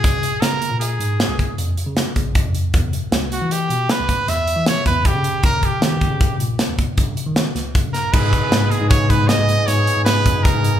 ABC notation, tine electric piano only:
X:1
M:7/4
L:1/16
Q:1/4=156
K:D#m
V:1 name="Tine electric piano" clef=bass
C,,2 z2 C,3 A,,3 G,,2 z C,,2 z E,,2 z C,2 z A,,,2 z E,,3 | =E,,2 z2 C,,3 =E,3 B,,2 z C,,2 z E,,3 E,2 z E,,2 z C,3 | D,,2 z2 D,3 C,3 A,,2 z D,,2 z =G,,2 z D,2 z C,,2 z G,,3 | [K:G#m] G,,2 z2 G,,2 z G,,3 G,,2 z G,,2 z G,,2 z G,,3 F,,2 z G,,3 |]